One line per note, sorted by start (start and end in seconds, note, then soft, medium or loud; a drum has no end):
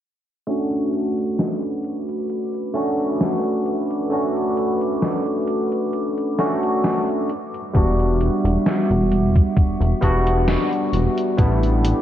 0.47 2.70 A3 medium
0.47 2.70 C#4 medium
0.47 2.71 D4 medium
0.47 2.71 F#4 medium
0.47 7.26 A4 medium
0.47 7.26 B4 medium
0.47 7.26 B5 medium
0.47 9.08 D6 medium
0.47 closed hi-hat soft
0.73 closed hi-hat soft
0.93 closed hi-hat medium
1.18 closed hi-hat soft
1.39 snare loud
1.39 closed hi-hat soft
1.64 closed hi-hat soft
1.84 closed hi-hat medium
2.09 closed hi-hat soft
2.30 closed hi-hat soft
2.54 closed hi-hat soft
2.74 4.06 A3 medium
2.74 4.06 C#4 medium
2.74 4.07 D4 medium
2.74 4.07 F#4 medium
2.74 closed hi-hat medium
3.00 closed hi-hat soft
3.21 snare loud
3.21 closed hi-hat soft
3.45 closed hi-hat soft
3.66 closed hi-hat medium
3.91 closed hi-hat medium
4.10 6.33 A3 medium
4.10 6.33 C#4 medium
4.10 6.34 D4 medium
4.10 6.34 F#4 medium
4.10 closed hi-hat soft
4.36 closed hi-hat soft
4.57 closed hi-hat medium
4.81 closed hi-hat medium
5.02 snare loud
5.02 closed hi-hat soft
5.27 closed hi-hat soft
5.47 closed hi-hat medium
5.72 closed hi-hat medium
5.93 closed hi-hat soft
6.18 closed hi-hat soft
6.38 7.27 A3 medium
6.38 7.27 C#4 medium
6.38 7.27 D4 medium
6.38 7.28 F#4 medium
6.38 snare medium
6.38 closed hi-hat medium
6.63 closed hi-hat soft
6.84 snare loud
6.84 closed hi-hat soft
7.09 closed hi-hat soft
7.30 11.35 G3 medium
7.30 12.02 E5 medium
7.30 11.35 F#5 medium
7.30 closed hi-hat medium
7.54 closed hi-hat soft
7.73 8.30 E1 medium
7.73 9.96 G3 medium
7.73 9.97 B3 medium
7.73 9.98 D4 medium
7.73 9.98 F#4 medium
7.73 kick loud
7.73 closed hi-hat soft
8.00 closed hi-hat soft
8.21 closed hi-hat medium
8.45 8.58 E1 loud
8.45 closed hi-hat soft
8.66 snare loud
8.66 closed hi-hat soft
8.90 9.44 E1 medium
8.90 closed hi-hat soft
9.12 11.37 C#6 medium
9.12 closed hi-hat medium
9.36 kick loud
9.36 closed hi-hat medium
9.56 9.76 E1 soft
9.56 kick loud
9.56 closed hi-hat soft
9.80 9.94 E1 medium
9.80 closed hi-hat soft
10.01 10.57 E1 medium
10.01 11.33 G3 medium
10.01 11.33 B3 medium
10.01 11.34 D4 medium
10.01 11.34 F#4 medium
10.01 kick medium
10.01 closed hi-hat medium
10.27 closed hi-hat soft
10.48 snare loud
10.48 closed hi-hat soft
10.73 closed hi-hat soft
10.93 11.08 E1 medium
10.93 closed hi-hat medium
11.18 closed hi-hat soft
11.37 11.93 A1 medium
11.37 12.02 G3 medium
11.37 12.02 B3 medium
11.37 12.02 D4 medium
11.37 12.02 E4 medium
11.37 12.02 A4 medium
11.37 12.02 G5 medium
11.37 12.02 D6 medium
11.37 kick loud
11.37 closed hi-hat soft
11.63 closed hi-hat soft
11.85 closed hi-hat medium